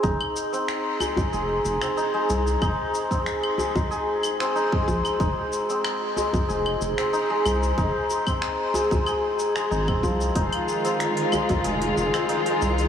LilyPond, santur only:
\new Staff \with { instrumentName = "Santur" } { \time 4/4 \key f \minor \tempo 4 = 93 ees'16 r8 c'16 r8 aes16 ees'16 aes'16 r8 c'16 ees'16 aes16 aes16 r16 | ees'16 r8 c'16 r8 aes16 ees'16 aes'16 r8 c'16 ees'16 aes16 aes16 r16 | ees'16 r8 c'16 r8 aes16 ees'16 aes'16 r8 c'16 ees'16 aes16 aes16 r16 | ees'16 r8 c'16 r8 aes16 ees'16 aes'16 r8 aes16 ees'16 c'16 f16 r16 |
ees'16 r8 c'16 r8 aes16 ees'16 aes'16 r8 c'16 ees'16 aes16 aes16 r16 | }